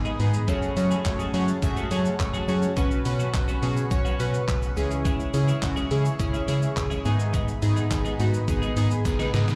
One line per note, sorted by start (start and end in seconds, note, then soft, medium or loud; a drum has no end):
0.00 2.73 G#3 medium
0.00 0.14 B3 medium
0.00 0.14 D#4 medium
0.00 0.14 G#4 loud
0.00 0.46 D#5 medium
0.00 0.46 B5 medium
0.05 0.18 G#3 medium
0.05 0.19 B3 medium
0.05 0.19 D#4 medium
0.05 0.20 G#4 medium
0.05 shaker medium
0.20 0.38 G#2 loud
0.20 0.43 B3 medium
0.20 0.43 D#4 medium
0.20 0.43 G#4 loud
0.20 muted clean electric guitar stroke soft
0.20 open hi-hat medium
0.20 shaker soft
0.34 muted clean electric guitar stroke soft
0.34 shaker medium
0.48 0.67 F#2 loud
0.48 0.74 F#3 medium
0.48 0.71 A3 loud
0.48 0.75 A3 medium
0.48 0.71 C#4 loud
0.48 0.75 C#4 medium
0.48 0.71 F#4 loud
0.48 0.71 G#4 loud
0.48 0.75 G#4 medium
0.48 0.71 C#5 loud
0.48 4.73 F#5 medium
0.48 2.74 A5 medium
0.48 kick loud
0.48 closed hi-hat medium
0.48 shaker medium
0.62 shaker soft
0.77 0.95 F#3 loud
0.77 1.00 A3 medium
0.77 1.00 C#4 medium
0.77 1.00 F#4 medium
0.77 1.00 G#4 medium
0.77 1.00 C#5 loud
0.77 muted clean electric guitar stroke soft
0.77 open hi-hat medium
0.77 shaker medium
0.77 shaker soft
0.91 1.04 F#3 medium
0.91 1.04 A3 medium
0.91 1.05 C#4 medium
0.91 1.05 G#4 medium
0.91 shaker soft
0.91 shaker medium
1.05 1.24 F#2 loud
1.05 1.28 A3 medium
1.05 1.28 C#4 medium
1.05 1.28 F#4 medium
1.05 1.28 G#4 medium
1.05 1.29 C#5 loud
1.05 muted clean electric guitar stroke soft
1.05 kick loud
1.05 clap loud
1.05 closed hi-hat medium
1.05 shaker medium
1.19 1.32 F#3 medium
1.19 1.33 A3 medium
1.19 1.34 C#4 medium
1.19 1.34 G#4 medium
1.19 shaker soft
1.19 shaker medium
1.34 1.48 F#3 medium
1.34 1.52 F#3 loud
1.34 1.57 A3 medium
1.34 1.48 A3 medium
1.34 1.57 C#4 medium
1.34 1.47 C#4 medium
1.34 1.57 F#4 medium
1.34 1.57 G#4 medium
1.34 1.47 G#4 medium
1.34 1.57 C#5 medium
1.34 open hi-hat medium
1.34 shaker medium
1.48 muted clean electric guitar stroke soft
1.48 shaker medium
1.62 1.81 F#2 loud
1.62 1.85 A3 loud
1.62 1.85 C#4 loud
1.62 1.86 F#4 loud
1.62 1.86 G#4 loud
1.62 1.86 E5 loud
1.62 muted clean electric guitar stroke soft
1.62 kick loud
1.62 closed hi-hat medium
1.62 shaker medium
1.77 1.89 F#3 medium
1.77 1.90 A3 medium
1.77 1.91 C#4 medium
1.77 1.91 G#4 medium
1.77 shaker medium
1.91 2.10 F#3 medium
1.91 2.10 F#3 loud
1.91 2.14 A3 medium
1.91 2.05 A3 loud
1.91 2.14 C#4 medium
1.91 2.05 C#4 medium
1.91 2.14 F#4 medium
1.91 2.14 G#4 medium
1.91 2.04 G#4 loud
1.91 2.14 C#5 loud
1.91 open hi-hat medium
1.91 shaker medium
1.91 shaker soft
2.05 muted clean electric guitar stroke soft
2.05 shaker medium
2.19 2.38 F#2 loud
2.19 2.42 A3 medium
2.19 2.43 C#4 medium
2.19 2.43 F#4 medium
2.19 2.43 G#4 medium
2.19 2.43 C#5 loud
2.19 muted clean electric guitar stroke soft
2.19 kick loud
2.19 clap loud
2.19 closed hi-hat medium
2.19 shaker medium
2.33 2.47 F#3 medium
2.33 2.47 A3 medium
2.33 2.48 C#4 medium
2.33 2.48 G#4 medium
2.33 shaker soft
2.33 shaker medium
2.48 2.63 F#3 medium
2.48 2.67 F#3 loud
2.48 2.71 A3 medium
2.48 2.62 A3 medium
2.48 2.71 C#4 medium
2.48 2.62 C#4 medium
2.48 2.71 F#4 medium
2.48 2.71 G#4 medium
2.48 2.61 G#4 medium
2.48 2.71 C#5 loud
2.48 open hi-hat medium
2.48 shaker medium
2.48 shaker soft
2.62 muted clean electric guitar stroke soft
2.62 shaker medium
2.76 2.95 B1 loud
2.76 2.95 F#3 medium
2.76 2.91 B3 medium
2.76 2.99 C#4 loud
2.76 2.90 C#4 loud
2.76 3.00 F#4 loud
2.76 2.90 F#4 loud
2.76 4.75 B4 medium
2.76 3.00 B4 loud
2.76 4.75 C#6 medium
2.76 kick loud
2.76 closed hi-hat medium
2.76 shaker medium
2.91 muted clean electric guitar stroke medium
2.91 shaker medium
3.05 3.24 B2 loud
3.05 3.28 C#4 medium
3.05 3.28 F#4 medium
3.05 3.28 B4 loud
3.05 muted clean electric guitar stroke soft
3.05 open hi-hat medium
3.05 shaker medium
3.19 3.33 F#3 medium
3.19 3.33 B3 medium
3.19 3.33 C#4 medium
3.19 3.34 F#4 medium
3.19 shaker soft
3.19 shaker medium
3.34 3.53 B1 loud
3.34 3.57 C#4 medium
3.34 3.57 F#4 medium
3.34 3.57 B4 loud
3.34 muted clean electric guitar stroke soft
3.34 kick loud
3.34 clap loud
3.34 closed hi-hat medium
3.34 shaker medium
3.48 3.61 F#3 medium
3.48 3.62 B3 medium
3.48 3.62 C#4 medium
3.48 3.63 F#4 medium
3.48 shaker soft
3.48 shaker medium
3.62 3.81 B2 loud
3.62 3.77 F#3 medium
3.62 3.76 B3 medium
3.62 3.85 C#4 medium
3.62 3.76 C#4 medium
3.62 3.85 F#4 medium
3.62 3.75 F#4 medium
3.62 3.86 G#4 medium
3.62 open hi-hat medium
3.62 shaker medium
3.76 muted clean electric guitar stroke soft
3.76 shaker soft
3.76 shaker medium
3.91 4.10 B1 loud
3.91 4.14 C#4 loud
3.91 4.14 F#4 loud
3.91 4.14 C#5 loud
3.91 muted clean electric guitar stroke soft
3.91 kick loud
3.91 closed hi-hat medium
3.91 shaker medium
4.05 4.18 F#3 medium
4.05 4.19 B3 medium
4.05 4.19 C#4 medium
4.05 4.20 F#4 medium
4.05 shaker medium
4.19 4.38 B2 loud
4.19 4.34 F#3 medium
4.19 4.33 B3 medium
4.19 4.42 C#4 medium
4.19 4.33 C#4 medium
4.19 4.42 F#4 medium
4.19 4.32 F#4 medium
4.19 4.43 B4 loud
4.19 open hi-hat loud
4.19 shaker soft
4.19 shaker medium
4.33 muted clean electric guitar stroke medium
4.33 shaker medium
4.48 4.67 B1 loud
4.48 4.71 C#4 medium
4.48 4.71 F#4 medium
4.48 4.71 B4 loud
4.48 muted clean electric guitar stroke soft
4.48 kick loud
4.48 clap loud
4.48 closed hi-hat medium
4.48 shaker medium
4.62 muted clean electric guitar stroke medium
4.62 shaker soft
4.62 shaker medium
4.76 5.14 C#2 loud
4.76 5.22 C#4 loud
4.76 5.23 E4 medium
4.76 9.55 G#4 medium
4.76 5.23 G#4 loud
4.76 7.03 E5 medium
4.76 7.03 C#6 medium
4.76 open hi-hat medium
4.76 shaker medium
4.76 shaker soft
4.91 muted clean electric guitar stroke soft
4.91 shaker medium
5.05 5.31 G#3 medium
5.05 5.32 C#4 medium
5.05 5.32 E4 medium
5.05 5.32 G#4 medium
5.05 kick loud
5.05 closed hi-hat medium
5.05 shaker medium
5.20 shaker medium
5.33 5.52 C#3 loud
5.33 5.57 C#4 medium
5.33 5.57 E4 medium
5.33 5.57 G#4 loud
5.33 muted clean electric guitar stroke soft
5.33 open hi-hat medium
5.33 shaker medium
5.48 5.61 G#3 medium
5.48 5.61 C#4 medium
5.48 5.62 E4 medium
5.48 5.62 G#4 medium
5.48 shaker medium
5.48 shaker soft
5.62 5.81 C#2 loud
5.62 5.85 C#4 medium
5.62 5.86 E4 medium
5.62 5.86 F#4 loud
5.62 muted clean electric guitar stroke soft
5.62 kick loud
5.62 clap loud
5.62 closed hi-hat medium
5.62 shaker medium
5.76 5.89 G#3 medium
5.76 5.90 C#4 medium
5.76 5.90 E4 medium
5.76 5.91 G#4 medium
5.76 shaker soft
5.76 shaker medium
5.90 6.10 C#3 loud
5.90 6.05 G#3 medium
5.90 6.14 C#4 medium
5.90 6.05 C#4 medium
5.90 6.14 E4 medium
5.90 6.04 E4 medium
5.90 6.14 G#4 medium
5.90 6.04 G#4 medium
5.90 open hi-hat medium
5.90 shaker medium
6.05 muted clean electric guitar stroke medium
6.05 shaker medium
6.19 6.38 C#2 loud
6.19 6.42 C#4 loud
6.19 6.43 E4 loud
6.19 6.43 G#4 loud
6.19 muted clean electric guitar stroke medium
6.19 kick loud
6.19 closed hi-hat medium
6.19 shaker medium
6.33 6.46 G#3 medium
6.33 6.47 C#4 medium
6.33 6.47 E4 medium
6.33 6.48 G#4 medium
6.33 shaker medium
6.47 6.67 C#3 medium
6.47 6.67 G#3 medium
6.47 6.62 C#4 loud
6.47 6.71 C#4 medium
6.47 6.71 E4 medium
6.47 6.61 E4 loud
6.47 6.71 G#4 loud
6.47 6.61 G#4 medium
6.47 open hi-hat loud
6.47 shaker soft
6.47 shaker medium
6.62 muted clean electric guitar stroke medium
6.62 shaker medium
6.76 6.95 C#2 loud
6.76 6.99 C#4 medium
6.76 7.00 E4 medium
6.76 7.00 G#4 loud
6.76 muted clean electric guitar stroke soft
6.76 kick loud
6.76 clap loud
6.76 closed hi-hat medium
6.76 shaker medium
6.90 7.03 G#3 medium
6.90 7.05 C#4 medium
6.90 7.05 E4 medium
6.90 7.05 G#4 medium
6.90 shaker soft
6.90 shaker medium
7.05 7.43 G#2 loud
7.05 7.20 G#3 medium
7.05 7.51 B3 loud
7.05 7.19 B3 medium
7.05 7.51 D#4 medium
7.05 7.19 D#4 medium
7.05 7.51 G#4 loud
7.05 7.18 G#4 medium
7.05 9.55 D#5 medium
7.05 9.55 B5 medium
7.05 open hi-hat medium
7.05 shaker medium
7.05 shaker soft
7.19 muted clean electric guitar stroke soft
7.19 shaker medium
7.33 7.52 G#3 medium
7.33 7.48 B3 medium
7.33 7.47 D#4 medium
7.33 7.47 G#4 loud
7.33 kick loud
7.33 closed hi-hat medium
7.33 shaker medium
7.48 muted clean electric guitar stroke soft
7.48 shaker medium
7.62 7.81 G#2 loud
7.62 7.85 B3 medium
7.62 7.85 D#4 medium
7.62 7.85 G#4 loud
7.62 muted clean electric guitar stroke soft
7.62 open hi-hat medium
7.62 shaker medium
7.76 7.89 G#3 medium
7.76 7.90 B3 medium
7.76 7.90 D#4 medium
7.76 7.91 G#4 medium
7.76 shaker soft
7.76 shaker medium
7.91 8.10 G#1 loud
7.91 8.14 B3 medium
7.91 8.14 D#4 medium
7.91 8.14 G#4 loud
7.91 muted clean electric guitar stroke soft
7.91 kick loud
7.91 clap loud
7.91 closed hi-hat medium
7.91 shaker medium
8.05 8.18 G#3 medium
8.05 8.18 B3 medium
8.05 8.19 D#4 medium
8.05 8.19 G#4 medium
8.05 shaker soft
8.05 shaker medium
8.19 8.38 G#2 loud
8.19 8.34 G#3 medium
8.19 8.42 B3 medium
8.19 8.33 B3 medium
8.19 8.43 D#4 medium
8.19 8.33 D#4 medium
8.19 8.43 F#4 loud
8.19 8.32 G#4 medium
8.19 open hi-hat medium
8.19 shaker medium
8.34 muted clean electric guitar stroke soft
8.34 shaker medium
8.48 8.67 G#1 loud
8.48 8.71 B3 loud
8.48 8.71 D#4 loud
8.48 8.71 G#4 loud
8.48 muted clean electric guitar stroke soft
8.48 kick loud
8.48 closed hi-hat medium
8.48 shaker medium
8.62 8.75 G#3 medium
8.62 8.76 B3 medium
8.62 8.76 D#4 medium
8.62 8.77 G#4 medium
8.62 shaker medium
8.76 8.95 G#2 loud
8.76 8.91 G#3 medium
8.76 9.00 B3 medium
8.76 8.91 B3 medium
8.76 9.00 D#4 medium
8.76 8.90 D#4 medium
8.76 9.00 G#4 loud
8.76 8.89 G#4 medium
8.76 open hi-hat loud
8.76 shaker medium
8.76 shaker soft
8.91 muted clean electric guitar stroke soft
8.91 shaker soft
8.91 shaker medium
9.05 9.24 G#1 loud
9.05 9.28 B3 medium
9.05 9.28 D#4 medium
9.05 9.29 G#4 loud
9.05 muted clean electric guitar stroke soft
9.05 kick loud
9.05 snare medium
9.05 closed hi-hat medium
9.05 shaker medium
9.19 9.32 G#3 medium
9.19 9.33 B3 medium
9.19 9.33 D#4 medium
9.19 9.33 G#4 medium
9.19 snare medium
9.19 shaker soft
9.19 shaker medium
9.33 9.52 G#2 loud
9.33 9.55 B3 medium
9.33 9.55 D#4 medium
9.33 9.55 G#4 loud
9.33 muted clean electric guitar stroke soft
9.33 snare loud
9.33 open hi-hat medium
9.33 shaker soft
9.33 shaker medium
9.48 muted clean electric guitar stroke medium
9.48 snare loud
9.48 shaker medium